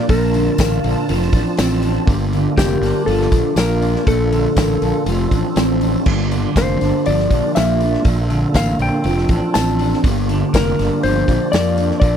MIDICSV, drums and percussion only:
0, 0, Header, 1, 2, 480
1, 0, Start_track
1, 0, Key_signature, -2, "minor"
1, 0, Tempo, 495868
1, 95, Time_signature, 4, 2, 24, 8
1, 11779, End_track
2, 0, Start_track
2, 0, Title_t, "Drums"
2, 86, Note_on_c, 9, 46, 87
2, 90, Note_on_c, 9, 36, 110
2, 183, Note_off_c, 9, 46, 0
2, 186, Note_off_c, 9, 36, 0
2, 330, Note_on_c, 9, 46, 69
2, 427, Note_off_c, 9, 46, 0
2, 565, Note_on_c, 9, 54, 102
2, 568, Note_on_c, 9, 46, 89
2, 569, Note_on_c, 9, 36, 88
2, 579, Note_on_c, 9, 38, 108
2, 661, Note_off_c, 9, 54, 0
2, 665, Note_off_c, 9, 36, 0
2, 665, Note_off_c, 9, 46, 0
2, 676, Note_off_c, 9, 38, 0
2, 814, Note_on_c, 9, 46, 70
2, 910, Note_off_c, 9, 46, 0
2, 1055, Note_on_c, 9, 46, 91
2, 1152, Note_off_c, 9, 46, 0
2, 1182, Note_on_c, 9, 38, 33
2, 1279, Note_off_c, 9, 38, 0
2, 1286, Note_on_c, 9, 36, 99
2, 1287, Note_on_c, 9, 46, 68
2, 1382, Note_off_c, 9, 36, 0
2, 1384, Note_off_c, 9, 46, 0
2, 1523, Note_on_c, 9, 46, 85
2, 1534, Note_on_c, 9, 38, 116
2, 1536, Note_on_c, 9, 54, 106
2, 1620, Note_off_c, 9, 46, 0
2, 1631, Note_off_c, 9, 38, 0
2, 1632, Note_off_c, 9, 54, 0
2, 1766, Note_on_c, 9, 46, 62
2, 1863, Note_off_c, 9, 46, 0
2, 2007, Note_on_c, 9, 46, 81
2, 2008, Note_on_c, 9, 36, 118
2, 2104, Note_off_c, 9, 46, 0
2, 2105, Note_off_c, 9, 36, 0
2, 2255, Note_on_c, 9, 46, 57
2, 2352, Note_off_c, 9, 46, 0
2, 2492, Note_on_c, 9, 36, 84
2, 2496, Note_on_c, 9, 46, 78
2, 2505, Note_on_c, 9, 54, 105
2, 2507, Note_on_c, 9, 38, 108
2, 2589, Note_off_c, 9, 36, 0
2, 2592, Note_off_c, 9, 46, 0
2, 2602, Note_off_c, 9, 54, 0
2, 2604, Note_off_c, 9, 38, 0
2, 2739, Note_on_c, 9, 46, 62
2, 2750, Note_on_c, 9, 38, 35
2, 2835, Note_off_c, 9, 46, 0
2, 2847, Note_off_c, 9, 38, 0
2, 2979, Note_on_c, 9, 46, 84
2, 3075, Note_off_c, 9, 46, 0
2, 3110, Note_on_c, 9, 38, 34
2, 3207, Note_off_c, 9, 38, 0
2, 3212, Note_on_c, 9, 36, 94
2, 3212, Note_on_c, 9, 46, 62
2, 3308, Note_off_c, 9, 46, 0
2, 3309, Note_off_c, 9, 36, 0
2, 3449, Note_on_c, 9, 46, 82
2, 3456, Note_on_c, 9, 54, 105
2, 3461, Note_on_c, 9, 38, 110
2, 3546, Note_off_c, 9, 46, 0
2, 3552, Note_off_c, 9, 54, 0
2, 3558, Note_off_c, 9, 38, 0
2, 3700, Note_on_c, 9, 46, 63
2, 3797, Note_off_c, 9, 46, 0
2, 3829, Note_on_c, 9, 38, 36
2, 3926, Note_off_c, 9, 38, 0
2, 3938, Note_on_c, 9, 36, 111
2, 3939, Note_on_c, 9, 46, 83
2, 4035, Note_off_c, 9, 36, 0
2, 4036, Note_off_c, 9, 46, 0
2, 4186, Note_on_c, 9, 46, 63
2, 4283, Note_off_c, 9, 46, 0
2, 4419, Note_on_c, 9, 46, 89
2, 4420, Note_on_c, 9, 36, 85
2, 4421, Note_on_c, 9, 54, 97
2, 4431, Note_on_c, 9, 38, 120
2, 4516, Note_off_c, 9, 46, 0
2, 4517, Note_off_c, 9, 36, 0
2, 4518, Note_off_c, 9, 54, 0
2, 4528, Note_off_c, 9, 38, 0
2, 4665, Note_on_c, 9, 46, 70
2, 4762, Note_off_c, 9, 46, 0
2, 4902, Note_on_c, 9, 46, 97
2, 4998, Note_off_c, 9, 46, 0
2, 5144, Note_on_c, 9, 36, 89
2, 5148, Note_on_c, 9, 46, 68
2, 5241, Note_off_c, 9, 36, 0
2, 5245, Note_off_c, 9, 46, 0
2, 5381, Note_on_c, 9, 46, 87
2, 5391, Note_on_c, 9, 54, 95
2, 5393, Note_on_c, 9, 38, 110
2, 5478, Note_off_c, 9, 46, 0
2, 5488, Note_off_c, 9, 54, 0
2, 5490, Note_off_c, 9, 38, 0
2, 5625, Note_on_c, 9, 46, 68
2, 5722, Note_off_c, 9, 46, 0
2, 5864, Note_on_c, 9, 49, 100
2, 5868, Note_on_c, 9, 36, 116
2, 5961, Note_off_c, 9, 49, 0
2, 5965, Note_off_c, 9, 36, 0
2, 6112, Note_on_c, 9, 46, 66
2, 6209, Note_off_c, 9, 46, 0
2, 6349, Note_on_c, 9, 36, 90
2, 6349, Note_on_c, 9, 46, 85
2, 6356, Note_on_c, 9, 54, 92
2, 6360, Note_on_c, 9, 38, 114
2, 6446, Note_off_c, 9, 36, 0
2, 6446, Note_off_c, 9, 46, 0
2, 6453, Note_off_c, 9, 54, 0
2, 6457, Note_off_c, 9, 38, 0
2, 6593, Note_on_c, 9, 46, 62
2, 6604, Note_on_c, 9, 38, 34
2, 6689, Note_off_c, 9, 46, 0
2, 6701, Note_off_c, 9, 38, 0
2, 6831, Note_on_c, 9, 46, 87
2, 6928, Note_off_c, 9, 46, 0
2, 6965, Note_on_c, 9, 38, 34
2, 7062, Note_off_c, 9, 38, 0
2, 7071, Note_on_c, 9, 36, 88
2, 7071, Note_on_c, 9, 46, 63
2, 7168, Note_off_c, 9, 36, 0
2, 7168, Note_off_c, 9, 46, 0
2, 7316, Note_on_c, 9, 46, 82
2, 7318, Note_on_c, 9, 54, 97
2, 7327, Note_on_c, 9, 38, 111
2, 7413, Note_off_c, 9, 46, 0
2, 7415, Note_off_c, 9, 54, 0
2, 7424, Note_off_c, 9, 38, 0
2, 7556, Note_on_c, 9, 46, 62
2, 7652, Note_off_c, 9, 46, 0
2, 7684, Note_on_c, 9, 38, 34
2, 7781, Note_off_c, 9, 38, 0
2, 7789, Note_on_c, 9, 46, 83
2, 7792, Note_on_c, 9, 36, 112
2, 7886, Note_off_c, 9, 46, 0
2, 7889, Note_off_c, 9, 36, 0
2, 8036, Note_on_c, 9, 46, 64
2, 8133, Note_off_c, 9, 46, 0
2, 8269, Note_on_c, 9, 46, 83
2, 8273, Note_on_c, 9, 36, 90
2, 8280, Note_on_c, 9, 54, 101
2, 8281, Note_on_c, 9, 38, 114
2, 8366, Note_off_c, 9, 46, 0
2, 8370, Note_off_c, 9, 36, 0
2, 8377, Note_off_c, 9, 54, 0
2, 8378, Note_off_c, 9, 38, 0
2, 8512, Note_on_c, 9, 46, 65
2, 8609, Note_off_c, 9, 46, 0
2, 8749, Note_on_c, 9, 46, 92
2, 8846, Note_off_c, 9, 46, 0
2, 8884, Note_on_c, 9, 38, 36
2, 8980, Note_off_c, 9, 38, 0
2, 8990, Note_on_c, 9, 46, 68
2, 8994, Note_on_c, 9, 36, 100
2, 9087, Note_off_c, 9, 46, 0
2, 9091, Note_off_c, 9, 36, 0
2, 9235, Note_on_c, 9, 46, 85
2, 9243, Note_on_c, 9, 54, 108
2, 9247, Note_on_c, 9, 38, 113
2, 9332, Note_off_c, 9, 46, 0
2, 9340, Note_off_c, 9, 54, 0
2, 9344, Note_off_c, 9, 38, 0
2, 9479, Note_on_c, 9, 46, 72
2, 9576, Note_off_c, 9, 46, 0
2, 9615, Note_on_c, 9, 38, 36
2, 9712, Note_off_c, 9, 38, 0
2, 9718, Note_on_c, 9, 36, 111
2, 9720, Note_on_c, 9, 46, 92
2, 9815, Note_off_c, 9, 36, 0
2, 9817, Note_off_c, 9, 46, 0
2, 9962, Note_on_c, 9, 46, 65
2, 10059, Note_off_c, 9, 46, 0
2, 10201, Note_on_c, 9, 36, 91
2, 10201, Note_on_c, 9, 54, 98
2, 10208, Note_on_c, 9, 46, 83
2, 10219, Note_on_c, 9, 38, 123
2, 10297, Note_off_c, 9, 54, 0
2, 10298, Note_off_c, 9, 36, 0
2, 10304, Note_off_c, 9, 46, 0
2, 10316, Note_off_c, 9, 38, 0
2, 10447, Note_on_c, 9, 46, 68
2, 10459, Note_on_c, 9, 38, 35
2, 10544, Note_off_c, 9, 46, 0
2, 10555, Note_off_c, 9, 38, 0
2, 10681, Note_on_c, 9, 46, 89
2, 10778, Note_off_c, 9, 46, 0
2, 10919, Note_on_c, 9, 36, 97
2, 10926, Note_on_c, 9, 46, 65
2, 11016, Note_off_c, 9, 36, 0
2, 11023, Note_off_c, 9, 46, 0
2, 11161, Note_on_c, 9, 54, 85
2, 11162, Note_on_c, 9, 46, 79
2, 11174, Note_on_c, 9, 38, 108
2, 11258, Note_off_c, 9, 54, 0
2, 11259, Note_off_c, 9, 46, 0
2, 11271, Note_off_c, 9, 38, 0
2, 11399, Note_on_c, 9, 46, 66
2, 11496, Note_off_c, 9, 46, 0
2, 11530, Note_on_c, 9, 38, 34
2, 11627, Note_off_c, 9, 38, 0
2, 11631, Note_on_c, 9, 36, 117
2, 11631, Note_on_c, 9, 46, 83
2, 11728, Note_off_c, 9, 36, 0
2, 11728, Note_off_c, 9, 46, 0
2, 11779, End_track
0, 0, End_of_file